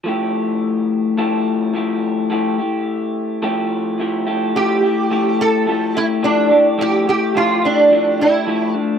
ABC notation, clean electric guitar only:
X:1
M:4/4
L:1/8
Q:"Swing 16ths" 1/4=107
K:F
V:1 name="Clean electric guitar"
[F,A,EG]4 [F,A,EG]2 [F,A,EG]2 | [F,A,EG] [A,EG]3 [F,A,EG]2 [F,A,EG] [F,A,EG] | [F,A,EG] [A,EG] [F,A,EG] [A,EG] [F,A,EG] [A,EG] [F,A,EG] [A,EG] | [F,A,EG] [A,EG] [F,A,EG] [A,EG] [F,A,EG] [A,EG] [F,A,EG] [F,A,D] |]